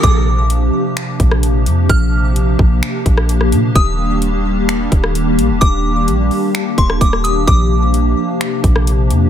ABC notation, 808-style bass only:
X:1
M:4/4
L:1/16
Q:1/4=129
K:Bb
V:1 name="808-style bass" clef=bass
B,,,6 z4 B,,,4 F,,2 | B,,,6 B,,,2 z2 B,,,4 B,,2 | E,,,8- E,,,2 E,,,4 B,,, E,,, | E,,,4 B,,,2 z4 E,,,2 E,,,4 |
B,,,6 z4 B,,,4 F,,2 |]